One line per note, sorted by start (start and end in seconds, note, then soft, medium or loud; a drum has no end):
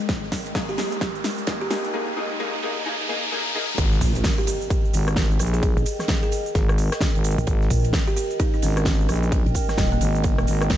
0.00 1.93 G#3 medium
0.00 1.94 A#4 medium
0.00 1.93 D#5 medium
0.00 1.94 G5 medium
0.00 riser medium
0.09 kick loud
0.09 snare medium
0.09 closed hi-hat medium
0.09 ride medium
0.23 snare soft
0.32 kick medium
0.32 snare medium
0.32 open hi-hat loud
0.32 ride medium
0.46 closed hi-hat soft
0.46 ride soft
0.55 0.69 A#3 medium
0.55 0.69 D#4 medium
0.55 0.69 G#4 medium
0.55 kick loud
0.55 snare medium
0.55 snare loud
0.55 closed hi-hat medium
0.55 open hi-hat medium
0.69 0.75 G4 medium
0.69 closed hi-hat soft
0.78 1.00 A#3 medium
0.78 1.00 D#4 medium
0.78 0.87 G4 medium
0.78 1.00 G#4 medium
0.78 snare medium
0.78 open hi-hat loud
0.78 ride medium
0.92 closed hi-hat soft
1.01 kick loud
1.01 snare medium
1.01 closed hi-hat medium
1.01 ride medium
1.15 closed hi-hat soft
1.24 snare medium
1.24 open hi-hat loud
1.24 ride medium
1.38 closed hi-hat soft
1.47 1.61 A#3 medium
1.47 1.61 D#4 medium
1.47 1.61 G#4 medium
1.47 kick loud
1.47 snare loud
1.47 snare medium
1.47 closed hi-hat medium
1.47 ride medium
1.61 1.67 G4 medium
1.70 1.92 A#3 medium
1.70 1.92 D#4 medium
1.70 1.79 G4 medium
1.70 1.92 G#4 medium
1.70 snare medium
1.70 open hi-hat medium
1.70 ride medium
1.85 closed hi-hat soft
1.93 2.07 A#3 medium
1.93 2.07 D#4 medium
1.93 2.07 G#4 loud
2.17 2.38 A#3 medium
2.17 2.38 D#4 medium
2.17 2.38 G#4 medium
2.40 2.53 A#3 medium
2.40 2.53 D#4 medium
2.40 2.53 G#4 loud
2.63 2.84 A#3 medium
2.63 2.84 D#4 medium
2.63 2.84 G#4 medium
2.86 2.99 A#3 medium
2.86 2.99 D#4 medium
2.86 2.99 G#4 loud
3.09 3.22 A#3 medium
3.09 3.22 D#4 medium
3.09 3.22 G#4 loud
3.32 3.45 A#3 medium
3.32 3.45 D#4 medium
3.32 3.45 G#4 loud
3.55 3.69 A#3 medium
3.55 3.69 D#4 medium
3.55 3.69 G#4 loud
3.78 4.00 G#1 loud
3.78 10.77 A#4 medium
3.78 kick loud
3.78 closed hi-hat medium
3.78 crash loud
3.78 ride medium
3.78 impact medium
3.78 shaker soft
3.92 snare soft
3.92 shaker soft
4.01 4.23 A#1 loud
4.01 kick medium
4.01 open hi-hat loud
4.01 ride medium
4.01 shaker medium
4.15 closed hi-hat medium
4.15 ride soft
4.15 shaker soft
4.24 10.77 D#5 medium
4.24 kick loud
4.24 snare loud
4.24 closed hi-hat medium
4.24 open hi-hat medium
4.24 shaker soft
4.30 10.77 G5 medium
4.38 4.44 G4 medium
4.38 shaker soft
4.47 4.56 G4 medium
4.47 open hi-hat medium
4.47 ride medium
4.47 shaker medium
4.62 closed hi-hat medium
4.62 shaker soft
4.70 kick loud
4.70 closed hi-hat medium
4.70 ride medium
4.70 shaker soft
4.85 shaker soft
4.93 5.38 G#1 medium
4.93 open hi-hat loud
4.93 ride medium
4.93 shaker medium
5.08 cross-stick medium
5.08 closed hi-hat medium
5.08 shaker soft
5.16 kick loud
5.16 snare loud
5.16 closed hi-hat medium
5.16 ride medium
5.16 shaker soft
5.31 shaker soft
5.39 5.75 A#1 medium
5.39 cross-stick medium
5.39 open hi-hat medium
5.39 ride medium
5.39 shaker medium
5.47 closed hi-hat medium
5.54 5.72 G#4 medium
5.54 closed hi-hat medium
5.54 shaker soft
5.63 kick loud
5.63 closed hi-hat medium
5.63 ride medium
5.63 shaker soft
5.77 5.84 A#1 medium
5.77 ride soft
5.77 shaker soft
5.86 open hi-hat loud
5.86 ride medium
5.86 shaker medium
5.99 cross-stick medium
5.99 snare soft
5.99 closed hi-hat medium
5.99 shaker soft
6.08 kick loud
6.08 snare loud
6.08 closed hi-hat medium
6.08 ride medium
6.08 shaker soft
6.10 snare loud
6.23 6.69 G#4 medium
6.23 shaker soft
6.32 open hi-hat loud
6.32 ride medium
6.32 shaker medium
6.46 closed hi-hat medium
6.46 shaker soft
6.55 6.90 G#1 loud
6.55 kick loud
6.55 snare loud
6.55 closed hi-hat medium
6.55 ride medium
6.55 shaker soft
6.69 cross-stick medium
6.69 shaker soft
6.78 open hi-hat loud
6.78 ride medium
6.78 shaker medium
6.92 cross-stick medium
6.92 snare loud
6.92 closed hi-hat medium
6.92 ride medium
6.92 shaker soft
7.01 kick loud
7.01 snare loud
7.01 closed hi-hat medium
7.01 shaker soft
7.15 7.36 G#1 medium
7.15 ride medium
7.15 shaker soft
7.24 open hi-hat medium
7.24 ride medium
7.24 shaker medium
7.31 closed hi-hat medium
7.38 7.46 A#1 loud
7.38 closed hi-hat medium
7.38 shaker soft
7.47 7.69 G#1 loud
7.47 kick loud
7.47 closed hi-hat medium
7.47 ride medium
7.47 shaker soft
7.62 snare soft
7.62 shaker soft
7.70 7.92 A#1 loud
7.70 kick medium
7.70 open hi-hat loud
7.70 ride medium
7.70 shaker medium
7.85 closed hi-hat medium
7.85 ride soft
7.85 shaker soft
7.93 kick loud
7.93 snare loud
7.93 closed hi-hat medium
7.93 open hi-hat medium
7.93 shaker soft
8.07 8.13 G4 medium
8.07 shaker soft
8.16 8.26 G4 medium
8.16 open hi-hat loud
8.16 ride medium
8.16 shaker medium
8.31 closed hi-hat medium
8.31 shaker soft
8.40 8.49 D#4 medium
8.40 kick loud
8.40 closed hi-hat medium
8.40 ride medium
8.40 shaker soft
8.54 8.59 D#4 medium
8.54 shaker soft
8.62 9.07 G#1 medium
8.62 8.72 C#4 medium
8.62 open hi-hat loud
8.62 ride medium
8.62 shaker medium
8.77 8.83 C#4 medium
8.77 cross-stick medium
8.77 closed hi-hat medium
8.77 shaker soft
8.85 kick loud
8.85 snare loud
8.85 closed hi-hat soft
8.85 ride medium
8.85 shaker soft
9.00 shaker soft
9.09 9.44 A#1 loud
9.09 cross-stick medium
9.09 open hi-hat medium
9.09 ride medium
9.09 shaker medium
9.16 closed hi-hat medium
9.23 closed hi-hat medium
9.23 shaker soft
9.32 kick loud
9.32 closed hi-hat medium
9.32 ride loud
9.32 shaker soft
9.46 9.54 A#1 loud
9.46 ride soft
9.46 shaker soft
9.54 kick medium
9.54 open hi-hat loud
9.54 ride medium
9.54 shaker medium
9.69 cross-stick medium
9.69 snare soft
9.69 closed hi-hat medium
9.69 shaker soft
9.78 10.00 D#1 loud
9.78 kick loud
9.78 snare loud
9.78 closed hi-hat medium
9.78 ride medium
9.78 shaker soft
9.92 9.98 A#3 medium
9.92 shaker soft
10.01 10.46 G#1 loud
10.01 10.10 A#3 medium
10.01 open hi-hat loud
10.01 ride medium
10.01 shaker medium
10.15 closed hi-hat soft
10.15 shaker soft
10.23 kick loud
10.23 closed hi-hat medium
10.23 ride medium
10.23 shaker soft
10.38 cross-stick medium
10.38 shaker soft
10.47 10.69 G#1 medium
10.47 open hi-hat loud
10.47 ride medium
10.47 shaker medium
10.61 cross-stick medium
10.61 closed hi-hat medium
10.61 shaker soft
10.70 10.77 G#1 loud
10.70 kick loud
10.70 snare loud
10.70 closed hi-hat soft
10.70 ride medium
10.70 shaker soft